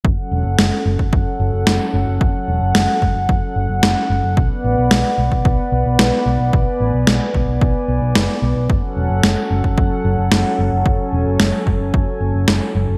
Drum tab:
SD |----o-------o---|----o-------o---|----o-------o---|----o-------o---|
BD |o------oo-------|o-----o-o-------|o------oo-------|o-----o-o-------|

SD |----o-------o---|----o-------o---|
BD |o------oo-------|o-----o-o-------|